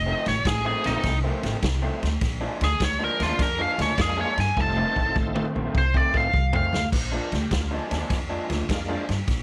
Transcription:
Already playing: F1 D#5
0.06 F2 D#3 A3 C4
0.26 A1 C#5, snare, ride
0.45 A1 G#4, kick, snare, ride
0.65 F2 D#3 A3 C4 G#4
0.84 A#1 F2 D#3 A3 C4 D#4 F4 A4, snare, ride
0.95 F2 D#3 A3 C4
1.03 C2, kick, snare, ride
1.24 F2 D#3 A3 C4
1.43 A1 F2 D#3 A3 C4, snare, ride
1.63 C2, kick, snare, ride
1.82 F2 D#3 A3 C4
2.03 D2, snare, ride
2.21 A#1, kick, snare, ride
2.41 A#2 F3 G#3 D4
2.61 D2 G#4, snare, ride
2.80 D2, kick, snare, ride
2.84 C#5
2.99 A#2 F3 G#3 D4
3.04 A#4
3.19 D#2 A#2 F3 G#3 D4 F4, snare, ride
3.29 A#2 F3 G#3 D4
3.39 F2 A#4, kick, snare, ride
3.59 A#2 F3 G#3 D4 F5
3.78 D2 A#2 F3 G#3 D4 C#5, snare, ride
3.98 F2 G#3 A#3 D4 F4 G#4, kick, snare, ride
4.17 A#2 F3 G#3 D4 C#5
4.37 G2 G#5, snare, ride
4.57 F1 A3 C4 D#4 F4 A4 A5, kick, high tom
4.76 F2 D#3 A3 C4
4.96 A1, kick
5.16 A1, kick, mid tom
5.35 F2 D#3 A3 C4, mid tom
5.54 A#1 F2 D#3 A3 C4
5.65 F2 D#3 A3 C4
5.75 C2 C5, kick
5.94 F2 D#3 A3 C4 D5, kick
6.14 A1 F2 D#3 A3 C4 D#4 F4 A4 F5, kick
6.34 C2, kick
6.53 F2 D#3 A3 C4 F5, floor tom
6.73 D2, snare
6.92 A#1 B4, kick, snare, crash
6.97 C5
7.12 A#2 F3 G#3 D4
7.17 A#4
7.32 D2, snare, ride
7.36 G4
7.51 D2, kick, snare, ride
7.55 F4
7.71 A#2 F3 G#3 D4
7.90 D#2 A#2 F3 G#3 C#4 D4, snare, ride
7.95 D4
8.00 A#2 F3 G#3 D4
8.10 F2, kick, snare, ride
8.29 A#2 F3 G#3 D4
8.49 D2 A#2 F3 G#3 D4, snare, ride
8.69 F2 G#3 A#3 D4 F4, kick, snare, ride
8.89 A#2 F3 G#3 D4
9.09 G2, snare, ride
9.28 A#1, kick, snare, ride

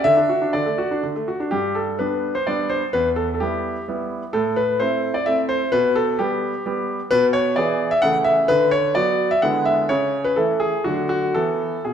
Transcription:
0.04 D3 E5
0.17 D4
0.29 F#4
0.42 D4
0.53 D3 D5
0.66 A3
0.78 F#4
0.91 D4
1.03 D3
1.16 A3
1.28 F#4
1.40 D4
1.51 G2 G4
1.75 A4
1.99 G3 B3 D4 B4
2.35 C5
2.47 G3 B3 D4 D5
2.69 C5
2.93 E2 B4
3.16 A4
3.34 A4
3.40 G3 B3 E4 G4
3.88 G3 B3 E4
4.33 A2 A4
4.56 B4
4.80 A3 C4 E4 C5
5.14 D5
5.26 A3 C4 E4 E5
5.49 C5
5.72 B2 B4
5.96 A4
6.19 G3 B3 G4
6.66 G3 B3 G4
7.11 B2 B4
7.33 C#5
7.56 E3 B3 G#4 D5
7.91 E5
8.02 C#3 E3 A3 A4 F#5
8.24 E5
8.48 D3 B4
8.71 C#5
8.95 F#3 B3 F#4 D5
9.31 E5
9.42 D3 G#3 B3 E4 F#5
9.65 E5
9.89 C#3 C#5
10.25 B4
10.36 E3 A3 E4 A4
10.60 G#4
10.84 D3 F#3 A3 D4 F#4
11.09 F#4
11.34 E3 B3 A4
11.85 B2 G#4

